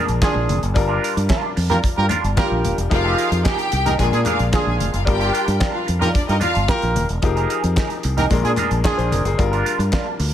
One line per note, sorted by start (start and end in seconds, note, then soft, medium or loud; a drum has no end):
0.00 0.73 A#2 medium
0.00 0.74 G#3 medium
0.00 0.11 D4 medium
0.00 0.73 D4 medium
0.00 0.75 A#4 medium
0.07 0.20 A#1 medium
0.07 muted clean electric guitar stroke medium
0.07 closed hi-hat soft
0.21 0.60 D4 loud
0.21 0.60 F4 loud
0.21 0.60 G#4 loud
0.21 muted clean electric guitar stroke soft
0.21 kick loud
0.21 snare loud
0.21 clap loud
0.21 high conga medium
0.34 0.46 A#1 medium
0.34 muted clean electric guitar stroke soft
0.49 0.60 F1 loud
0.49 closed hi-hat medium
0.49 high conga medium
0.61 0.76 F#1 medium
0.61 muted clean electric guitar stroke soft
0.61 closed hi-hat soft
0.74 0.98 G1 loud
0.74 2.33 G3 medium
0.74 2.34 D4 medium
0.74 2.34 F4 medium
0.74 2.35 A#4 medium
0.74 muted clean electric guitar stroke soft
0.74 kick loud
0.74 closed hi-hat medium
0.74 muted conga medium
0.88 1.00 D4 medium
0.88 1.01 F4 medium
0.88 1.02 A#4 medium
1.01 1.15 D4 medium
1.01 1.15 F4 medium
1.01 1.14 A#4 medium
1.01 closed hi-hat medium
1.15 1.28 G2 medium
1.15 muted clean electric guitar stroke medium
1.15 closed hi-hat medium
1.29 1.49 D4 medium
1.29 1.43 F4 medium
1.29 1.42 A#4 loud
1.29 kick loud
1.29 snare loud
1.29 clap loud
1.29 high conga medium
1.43 muted clean electric guitar stroke soft
1.56 1.79 F2 medium
1.56 muted clean electric guitar stroke soft
1.56 open hi-hat medium
1.70 1.84 D4 medium
1.70 1.79 F4 medium
1.70 1.83 F4 medium
1.70 1.79 G4 medium
1.70 1.83 A#4 medium
1.70 1.79 A#4 loud
1.70 snare soft
1.70 closed hi-hat soft
1.70 low conga medium
1.83 kick loud
1.83 closed hi-hat medium
1.83 muted conga medium
1.96 2.08 G2 medium
1.96 2.06 F4 medium
1.96 2.06 G4 medium
1.96 2.06 A#4 medium
1.96 muted clean electric guitar stroke medium
2.09 2.27 D4 medium
2.09 2.23 F4 medium
2.09 2.22 A#4 loud
2.09 clap medium
2.09 closed hi-hat medium
2.09 low conga medium
2.24 2.35 G1 medium
2.24 muted clean electric guitar stroke medium
2.24 closed hi-hat soft
2.36 2.91 G3 medium
2.36 2.91 D4 medium
2.36 2.91 F4 medium
2.36 2.76 F4 loud
2.36 2.76 G4 medium
2.36 2.90 G4 medium
2.36 2.76 A#4 loud
2.36 muted clean electric guitar stroke soft
2.36 kick loud
2.36 snare loud
2.36 clap loud
2.36 high conga medium
2.50 2.62 A#1 medium
2.50 muted clean electric guitar stroke medium
2.64 2.76 D#1 medium
2.64 closed hi-hat medium
2.64 high conga medium
2.78 2.89 E1 medium
2.78 muted clean electric guitar stroke soft
2.78 closed hi-hat medium
2.90 3.14 F1 loud
2.90 3.96 F3 medium
2.90 3.97 D#4 medium
2.90 3.42 F4 loud
2.90 3.97 G4 medium
2.90 3.97 G#4 medium
2.90 3.98 A#4 medium
2.90 3.42 F5 loud
2.90 muted clean electric guitar stroke soft
2.90 kick loud
2.90 closed hi-hat medium
2.90 muted conga medium
3.04 3.16 D#4 medium
3.04 3.17 G#4 medium
3.04 3.18 A#4 medium
3.17 3.31 D#4 medium
3.17 3.31 G#4 medium
3.17 3.30 A#4 medium
3.17 closed hi-hat medium
3.31 3.43 F2 loud
3.31 muted clean electric guitar stroke soft
3.31 closed hi-hat medium
3.44 3.62 D#4 medium
3.44 3.96 G4 loud
3.44 3.58 G#4 loud
3.44 3.57 A#4 loud
3.44 3.96 G5 loud
3.44 kick loud
3.44 snare loud
3.44 clap loud
3.44 high conga medium
3.58 muted clean electric guitar stroke medium
3.58 closed hi-hat soft
3.72 3.95 C2 medium
3.72 muted clean electric guitar stroke soft
3.72 closed hi-hat medium
3.86 3.94 D#4 medium
3.86 4.00 D#4 medium
3.86 3.94 G4 medium
3.86 3.99 G#4 medium
3.86 3.94 A#4 loud
3.86 3.99 A#4 medium
3.86 snare soft
3.86 closed hi-hat medium
3.86 low conga medium
3.98 4.11 A#1 loud
3.98 5.04 A#2 medium
3.98 5.05 G#3 medium
3.98 5.04 D4 medium
3.98 4.10 G#4 loud
3.98 5.06 A#4 medium
3.98 4.10 G#5 loud
3.98 kick medium
3.98 closed hi-hat medium
3.98 muted conga soft
4.12 4.24 A#2 loud
4.12 4.21 D4 medium
4.12 4.21 F4 medium
4.12 4.23 G#4 medium
4.12 4.21 G#4 medium
4.12 4.23 G#5 medium
4.12 muted clean electric guitar stroke medium
4.12 closed hi-hat soft
4.26 4.43 D4 medium
4.26 4.47 F4 medium
4.26 4.39 G#4 loud
4.26 4.38 A#4 loud
4.26 4.47 F5 loud
4.26 clap medium
4.26 closed hi-hat medium
4.26 low conga medium
4.39 4.51 A#1 medium
4.39 muted clean electric guitar stroke medium
4.39 closed hi-hat soft
4.52 4.91 D4 medium
4.52 4.63 F4 medium
4.52 4.91 F4 medium
4.52 4.91 G#4 loud
4.52 4.64 F5 medium
4.52 muted clean electric guitar stroke soft
4.52 kick loud
4.52 snare loud
4.52 clap loud
4.52 high conga medium
4.66 4.78 A#1 medium
4.66 4.77 G#4 medium
4.66 4.77 G#5 medium
4.66 muted clean electric guitar stroke soft
4.79 4.92 F1 medium
4.79 4.91 F4 medium
4.79 4.91 F5 medium
4.79 closed hi-hat medium
4.79 high conga medium
4.92 5.07 F#1 medium
4.92 5.04 F4 medium
4.92 5.04 F5 loud
4.92 muted clean electric guitar stroke soft
4.92 closed hi-hat soft
5.05 5.30 G1 loud
5.05 7.18 G3 medium
5.05 7.18 D4 medium
5.05 7.19 F4 medium
5.05 5.57 G4 loud
5.05 7.20 A#4 medium
5.05 5.57 G5 loud
5.05 muted clean electric guitar stroke medium
5.05 kick loud
5.05 closed hi-hat medium
5.05 muted conga medium
5.19 5.32 D4 medium
5.19 5.32 F4 medium
5.19 5.33 A#4 medium
5.19 closed hi-hat soft
5.33 5.47 D4 medium
5.33 5.46 F4 medium
5.33 5.45 A#4 medium
5.33 closed hi-hat medium
5.46 5.59 G2 loud
5.46 muted clean electric guitar stroke soft
5.46 closed hi-hat medium
5.60 5.78 D4 medium
5.60 5.73 F4 medium
5.60 5.72 A#4 loud
5.60 kick loud
5.60 snare loud
5.60 clap loud
5.60 high conga medium
5.73 5.85 F4 medium
5.73 5.85 F5 medium
5.73 muted clean electric guitar stroke soft
5.86 6.11 F2 medium
5.86 muted clean electric guitar stroke soft
5.86 closed hi-hat medium
5.99 6.15 D4 soft
5.99 6.12 D#4 medium
5.99 6.14 F4 medium
5.99 6.10 F4 medium
5.99 6.10 G4 medium
5.99 6.14 A#4 medium
5.99 6.10 A#4 loud
5.99 6.12 D#5 medium
5.99 snare soft
5.99 closed hi-hat soft
5.99 low conga medium
6.14 6.26 D4 medium
6.14 6.26 D5 loud
6.14 kick loud
6.14 closed hi-hat medium
6.14 muted conga medium
6.27 6.40 G2 loud
6.27 6.39 D#4 medium
6.27 6.37 F4 medium
6.27 6.37 G4 medium
6.27 6.37 A#4 medium
6.27 6.39 D#5 loud
6.27 muted clean electric guitar stroke soft
6.27 closed hi-hat soft
6.40 6.58 D4 medium
6.40 6.54 F4 medium
6.40 6.64 F4 loud
6.40 6.53 A#4 loud
6.40 6.63 F5 loud
6.40 clap medium
6.40 closed hi-hat medium
6.40 low conga medium
6.54 6.67 G1 medium
6.54 muted clean electric guitar stroke medium
6.54 closed hi-hat soft
6.68 7.07 F4 loud
6.68 7.07 G4 loud
6.68 7.07 A#4 loud
6.68 muted clean electric guitar stroke soft
6.68 kick loud
6.68 snare loud
6.68 clap loud
6.68 high conga medium
6.81 6.94 A#1 medium
6.81 muted clean electric guitar stroke soft
6.81 closed hi-hat soft
6.95 7.07 D#1 medium
6.95 closed hi-hat medium
6.95 high conga medium
7.08 7.21 E1 medium
7.08 muted clean electric guitar stroke soft
7.08 closed hi-hat soft
7.22 7.45 F1 loud
7.22 8.28 F3 medium
7.22 8.29 D#4 medium
7.22 8.29 G4 medium
7.22 8.29 G#4 medium
7.22 8.30 A#4 medium
7.22 muted clean electric guitar stroke soft
7.22 kick loud
7.22 closed hi-hat medium
7.22 muted conga medium
7.36 7.48 D#4 medium
7.36 7.48 G#4 medium
7.36 7.49 A#4 medium
7.36 closed hi-hat soft
7.49 7.63 D#4 medium
7.49 7.63 G#4 medium
7.49 7.62 A#4 medium
7.49 closed hi-hat medium
7.63 7.75 F2 loud
7.63 muted clean electric guitar stroke soft
7.63 closed hi-hat medium
7.76 7.94 D#4 loud
7.76 7.90 G#4 medium
7.76 7.89 A#4 medium
7.76 kick loud
7.76 snare loud
7.76 clap loud
7.76 high conga medium
7.90 muted clean electric guitar stroke soft
7.90 closed hi-hat soft
8.03 8.27 C2 loud
8.03 muted clean electric guitar stroke soft
8.03 closed hi-hat medium
8.17 8.26 D#4 medium
8.17 8.32 D#4 medium
8.17 8.26 G4 medium
8.17 8.31 G#4 medium
8.17 8.31 A#4 medium
8.17 8.26 A#4 medium
8.17 snare soft
8.17 closed hi-hat soft
8.17 low conga medium
8.30 8.42 A#1 loud
8.30 9.36 A#2 medium
8.30 9.37 G#3 medium
8.30 9.37 D4 medium
8.30 8.85 A#4 medium
8.30 kick loud
8.30 closed hi-hat medium
8.30 muted conga medium
8.44 8.56 A#2 medium
8.44 8.53 D4 medium
8.44 8.53 F4 medium
8.44 8.53 G#4 medium
8.44 muted clean electric guitar stroke medium
8.44 closed hi-hat soft
8.57 8.75 D4 medium
8.57 8.71 G#4 loud
8.57 8.70 A#4 loud
8.57 clap medium
8.57 closed hi-hat medium
8.57 low conga medium
8.71 8.82 A#1 medium
8.71 muted clean electric guitar stroke medium
8.71 closed hi-hat soft
8.84 9.23 D4 loud
8.84 9.23 F4 loud
8.84 9.23 G#4 loud
8.84 8.98 D5 medium
8.84 muted clean electric guitar stroke soft
8.84 kick loud
8.84 snare loud
8.84 clap loud
8.84 high conga medium
8.97 9.10 A#1 medium
8.97 9.11 C5 medium
8.97 muted clean electric guitar stroke medium
8.97 closed hi-hat soft
9.12 9.23 F1 medium
9.12 9.25 A#4 medium
9.12 closed hi-hat medium
9.12 high conga medium
9.25 9.36 F#1 medium
9.25 9.51 G#4 medium
9.25 muted clean electric guitar stroke soft
9.25 closed hi-hat soft
9.37 9.61 G1 loud
9.37 10.34 G3 medium
9.37 10.34 D4 medium
9.37 10.34 F4 medium
9.37 10.34 A#4 medium
9.37 kick loud
9.37 closed hi-hat medium
9.37 muted conga medium
9.52 9.64 D4 medium
9.52 9.64 F4 medium
9.52 9.65 A#4 loud
9.52 closed hi-hat soft
9.65 9.79 D4 medium
9.65 9.79 F4 medium
9.65 9.78 A#4 medium
9.65 closed hi-hat medium
9.65 muted conga soft
9.79 9.90 G2 loud
9.79 muted clean electric guitar stroke soft
9.79 closed hi-hat soft
9.92 10.10 D4 medium
9.92 10.06 F4 medium
9.92 10.05 A#4 loud
9.92 kick loud
9.92 snare loud
9.92 clap loud
9.92 high conga medium
10.06 muted clean electric guitar stroke medium
10.19 10.34 D2 medium
10.19 muted clean electric guitar stroke soft
10.19 open hi-hat medium